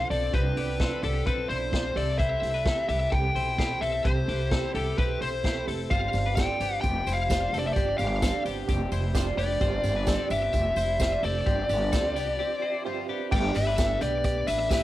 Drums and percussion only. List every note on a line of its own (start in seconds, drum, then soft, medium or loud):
0.11 open hi-hat medium
0.34 kick loud
0.34 closed hi-hat medium
0.57 open hi-hat medium
0.80 kick loud
0.80 snare loud
0.80 closed hi-hat medium
1.03 open hi-hat medium
1.26 kick loud
1.26 closed hi-hat medium
1.50 open hi-hat medium
1.73 kick loud
1.73 snare loud
1.73 closed hi-hat medium
1.97 open hi-hat medium
2.20 kick loud
2.20 closed hi-hat medium
2.43 open hi-hat medium
2.66 kick loud
2.66 snare loud
2.66 closed hi-hat medium
2.89 open hi-hat medium
3.12 kick loud
3.12 closed hi-hat medium
3.36 open hi-hat medium
3.58 kick loud
3.58 snare loud
3.58 closed hi-hat medium
3.82 open hi-hat medium
4.05 kick loud
4.05 closed hi-hat medium
4.29 open hi-hat medium
4.51 kick loud
4.51 snare loud
4.51 closed hi-hat medium
4.75 open hi-hat medium
4.98 kick loud
4.98 closed hi-hat medium
5.22 open hi-hat medium
5.44 kick loud
5.44 snare loud
5.44 closed hi-hat medium
5.68 open hi-hat medium
5.91 kick loud
5.91 closed hi-hat medium
5.91 tambourine soft
6.13 open hi-hat medium
6.13 tambourine soft
6.37 kick loud
6.37 snare loud
6.37 closed hi-hat medium
6.37 tambourine medium
6.60 open hi-hat medium
6.60 tambourine soft
6.83 kick medium
6.83 closed hi-hat medium
6.83 tambourine soft
7.07 open hi-hat medium
7.07 tambourine soft
7.30 kick loud
7.30 snare loud
7.30 closed hi-hat medium
7.30 tambourine medium
7.54 open hi-hat medium
7.54 tambourine soft
7.76 kick loud
7.76 closed hi-hat medium
7.76 tambourine soft
7.99 open hi-hat medium
7.99 tambourine soft
8.22 kick loud
8.22 snare loud
8.22 closed hi-hat medium
8.22 tambourine medium
8.45 open hi-hat medium
8.45 tambourine soft
8.69 kick loud
8.69 closed hi-hat medium
8.69 tambourine soft
8.92 open hi-hat medium
8.92 tambourine medium
9.15 kick loud
9.15 snare loud
9.15 closed hi-hat medium
9.15 tambourine medium
9.39 open hi-hat medium
9.39 tambourine soft
9.61 kick loud
9.61 closed hi-hat medium
9.61 tambourine soft
9.84 open hi-hat medium
9.84 tambourine soft
10.07 kick loud
10.07 snare loud
10.07 closed hi-hat medium
10.07 tambourine medium
10.30 open hi-hat medium
10.30 tambourine soft
10.53 kick medium
10.53 closed hi-hat medium
10.53 tambourine medium
10.76 open hi-hat medium
10.76 tambourine soft
11.00 kick loud
11.00 snare loud
11.00 closed hi-hat medium
11.00 tambourine medium
11.24 open hi-hat medium
11.24 tambourine soft
11.47 kick loud
11.47 closed hi-hat medium
11.69 open hi-hat medium
11.69 tambourine soft
11.93 kick loud
11.93 snare loud
11.93 closed hi-hat medium
11.93 tambourine medium
12.16 open hi-hat medium
12.16 tambourine soft
13.32 kick loud
13.32 crash medium
13.32 tambourine soft
13.55 hi-hat pedal medium
13.55 open hi-hat medium
13.55 tambourine soft
13.78 kick loud
13.78 snare loud
13.78 hi-hat pedal medium
13.78 open hi-hat medium
13.78 tambourine medium
14.01 hi-hat pedal medium
14.01 open hi-hat medium
14.01 tambourine soft
14.24 kick loud
14.24 hi-hat pedal medium
14.24 open hi-hat medium
14.24 tambourine medium
14.47 hi-hat pedal medium
14.47 open hi-hat medium
14.47 tambourine medium
14.71 kick loud
14.71 snare loud
14.71 hi-hat pedal medium
14.71 open hi-hat medium
14.71 tambourine medium